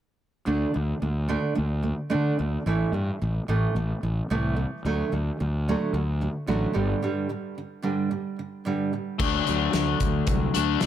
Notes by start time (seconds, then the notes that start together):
0.46 D2 D3 A3 D4
0.74 D2 D3 A3
1.02 D2 D3 A3
1.28 D3 A3 D4
1.55 D2 D3 A3
1.83 D3 A3
2.10 D3 A3 D4
2.14 D3
2.39 D2 D3 A3
2.66 A1 A2 E3 A3
2.92 G2 A2 E3
3.22 A1 A2 E3
3.48 A1 A2 E3 A3
3.75 A1 A2 E3
4.03 A1 A2 E3
4.30 C2 A2 E3 A3
4.56 A2 E3
4.85 D2 D3 F#3 A3
5.12 D2 D3 F#3
5.40 D2 D3 F#3
5.68 D3 F#3 A3
5.93 D2 D3 F#3
6.21 D3 F#3
6.47 A1 D3 F#3 A3
6.73 G1 G2 D3 G3
7.02 G2 D3 G3
7.29 G2 D3
7.58 G2 D3
7.82 G2 D3 G3
8.11 G2 D3
8.39 G2 D3
8.65 G2 D3 G3
8.93 G2 D3
9.19 D2 D3 A3 D4, kick, crash
9.47 D2 F#3, closed hi-hat
9.73 D2 A3, snare, closed hi-hat
10.00 D2 D3, kick, closed hi-hat
10.27 C2 F#3, kick, closed hi-hat
10.54 D2 D3 A3 D4, closed hi-hat
10.81 D2 D3 A3 D4, snare, closed hi-hat